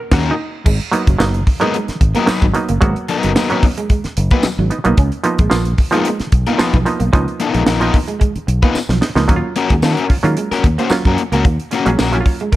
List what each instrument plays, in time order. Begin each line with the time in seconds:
Already playing: clav A#4
0.11 fingered electric bass D#2, overdriven electric guitar A#3 C#4 F#4 A#4, clav F#4, kick, snare, crash
0.31 clav D#4
0.66 fingered electric bass G#1, clean electric guitar G#3, kick, crash
0.80 closed hi-hat
0.92 clav F#3 A#3 B3 D#4, muted clean electric guitar stroke, closed hi-hat
1.07 fingered electric bass F#1, clean electric guitar F#3, kick, closed hi-hat
1.19 fingered electric bass F#1, clav F#3 A#3 B3 D#4, clean electric guitar A#3, snare, tambourine
1.34 closed hi-hat
1.47 muted clean electric guitar stroke, kick, open hi-hat
1.60 clav F#3 A#3 B3 D#4, overdriven electric guitar F#3 B3 D#4 A#4, clean electric guitar G#3, closed hi-hat
1.74 clean electric guitar G#3, closed hi-hat
1.88 muted fingered electric bass stroke, snare, closed hi-hat
2.01 fingered electric bass G#1, muted clean electric guitar stroke, kick, closed hi-hat
2.15 overdriven electric guitar F#3 B3 D#4 A#4, clean electric guitar A#3, closed hi-hat
2.26 clav F#3 A#3 B3 D#4, overdriven electric guitar F#3 B3 D#4, muted fingered electric bass stroke, snare, tambourine
2.31 overdriven electric guitar B4
2.42 fingered electric bass G#1, clean electric guitar F#3, kick, closed hi-hat
2.54 clav F#3 A#3 B3 D#4, muted clean electric guitar stroke, closed hi-hat
2.69 fingered electric bass F#1, clean electric guitar A#3, closed hi-hat
2.81 fingered electric bass G#1, clav F#3 A#3 B3 F#4, clean electric guitar G#3, kick, closed hi-hat
2.96 closed hi-hat
3.08 overdriven electric guitar F#3 B3 D#4 A#4, muted clean electric guitar stroke, closed hi-hat
3.23 fingered electric bass F#1, clean electric guitar F#3, closed hi-hat
3.35 overdriven electric guitar F#3 B3 D#4 A#4, clean electric guitar A#3, snare, tambourine
3.50 clav F#3 A#3 B3 C#4, overdriven electric guitar F#3 B3 D#4 A#4, closed hi-hat
3.63 muted clean electric guitar stroke, kick, open hi-hat
3.77 clean electric guitar G#3, closed hi-hat
3.90 clean electric guitar G#3, kick, closed hi-hat
4.04 muted fingered electric bass stroke, snare, closed hi-hat
4.17 fingered electric bass F#1, muted clean electric guitar stroke, closed hi-hat
4.31 overdriven electric guitar F#3 B3 D#4 B4, clean electric guitar A#3, kick, closed hi-hat
4.43 muted fingered electric bass stroke, snare, tambourine
4.58 fingered electric bass G#1, clean electric guitar F#3
4.70 clav B3 D#4, muted clean electric guitar stroke, closed hi-hat
4.84 fingered electric bass B1, clav F#3 A#3 B3 D#4, clean electric guitar A#3, closed hi-hat
4.97 fingered electric bass C#2, clean electric guitar C#4, kick, closed hi-hat
5.12 closed hi-hat
5.24 clav F3 A#3 B3 D#4, muted clean electric guitar stroke, closed hi-hat
5.39 fingered electric bass A#1, clean electric guitar G#3, kick, closed hi-hat
5.50 fingered electric bass A#1, clav F3 A#3 B3 F4, clean electric guitar A#3, snare, tambourine
5.65 closed hi-hat
5.78 muted clean electric guitar stroke, kick, open hi-hat
5.91 clav F3 A#3 B3 D#4, clean electric guitar G#3, overdriven electric guitar B3 D#4 F4 A#4, closed hi-hat
6.05 clean electric guitar G#3, closed hi-hat
6.20 muted fingered electric bass stroke, snare, closed hi-hat
6.32 fingered electric bass B1, muted clean electric guitar stroke, kick, closed hi-hat
6.46 clean electric guitar A#3, overdriven electric guitar B3 D#4 F4 A#4, closed hi-hat
6.58 clav F3 A#3 B3 F4, overdriven electric guitar B3 D#4 F4 B4, muted fingered electric bass stroke, snare, tambourine
6.73 fingered electric bass B1, clean electric guitar F3, kick, closed hi-hat
6.86 clav F3 A#3 B3 D#4, muted clean electric guitar stroke, closed hi-hat
7.00 fingered electric bass B1, clean electric guitar A#3, closed hi-hat
7.13 fingered electric bass C#2, clav F3 A#3 B3 D#4, clean electric guitar C#4, kick, closed hi-hat
7.28 closed hi-hat
7.40 overdriven electric guitar B3 D#4 F4 A#4, muted clean electric guitar stroke, closed hi-hat
7.54 fingered electric bass A#1, clean electric guitar G#3, closed hi-hat
7.66 fingered electric bass A#1, clean electric guitar A#3, overdriven electric guitar B3 D#4 F4 A#4, snare, tambourine
7.80 clav F3 A#3 B3 D#4, overdriven electric guitar B3 D#4 F4 A#4, closed hi-hat
7.94 muted clean electric guitar stroke, kick, open hi-hat
8.08 clean electric guitar G#3, closed hi-hat
8.20 clean electric guitar G#3, kick, closed hi-hat
8.36 muted fingered electric bass stroke, closed hi-hat
8.47 fingered electric bass B1, muted clean electric guitar stroke, closed hi-hat
8.62 clean electric guitar A#3, overdriven electric guitar B3 D#4 F4 B4, kick, closed hi-hat
8.75 muted fingered electric bass stroke, snare, tambourine
8.89 fingered electric bass B1, clean electric guitar F3, snare
9.01 clav B3 D#4, muted clean electric guitar stroke, snare
9.15 fingered electric bass C#2, clav F3 A#3 B3 D#4, clean electric guitar A#3, snare
9.28 fingered electric bass D#2, clav F#3 A#3 C#4 D#4, clean electric guitar A#3, kick, closed hi-hat
9.36 clav F4
9.56 overdriven electric guitar A#3 C#4 F#4 A#4, muted clean electric guitar stroke, closed hi-hat
9.70 fingered electric bass D#2, clean electric guitar G#3, kick, closed hi-hat
9.82 fingered electric bass D#3, overdriven electric guitar A#3 C#4 F#4 A#4, clean electric guitar A#3, snare, tambourine
9.97 closed hi-hat
10.09 clav C#4 F4, muted fingered electric bass stroke, muted clean electric guitar stroke, kick, open hi-hat
10.23 fingered electric bass D#3, clav F#3 A#3 C#4 F4, clean electric guitar G#3, closed hi-hat
10.37 clean electric guitar G#3, closed hi-hat
10.51 overdriven electric guitar A#3 C#4 F#4 A#4, muted fingered electric bass stroke, snare, closed hi-hat
10.64 fingered electric bass D#2, muted clean electric guitar stroke, kick, closed hi-hat
10.78 clean electric guitar A#3, overdriven electric guitar A#3 C#4 F#4 C5, closed hi-hat
10.90 clav F#3 A#3 C#4 F4, muted fingered electric bass stroke, snare, tambourine
11.05 fingered electric bass F#2, clean electric guitar F#3, overdriven electric guitar A#3 C#4 F#4 A#4, kick, closed hi-hat
11.18 muted clean electric guitar stroke, closed hi-hat
11.32 fingered electric bass C#2, clean electric guitar A#3, overdriven electric guitar A#3 C#4 F#4 A#4, closed hi-hat
11.44 fingered electric bass D#2, clean electric guitar A#3, kick, closed hi-hat
11.60 closed hi-hat
11.71 overdriven electric guitar A#3 C#4 F#4, clav C#4 F4, muted clean electric guitar stroke, closed hi-hat
11.75 overdriven electric guitar A#4
11.86 fingered electric bass A#1, clav F#3 A#3 C#4 G#4, clean electric guitar G#3, closed hi-hat
11.99 fingered electric bass A#1, clean electric guitar A#3, overdriven electric guitar A#3 C#4 F#4 A#4, snare, tambourine
12.12 clav F#3 A#3 C#4 E4, closed hi-hat
12.21 clav F4
12.25 clav C#5, muted clean electric guitar stroke, kick, open hi-hat
12.40 clean electric guitar G#3, closed hi-hat
12.52 clav A#4, kick, closed hi-hat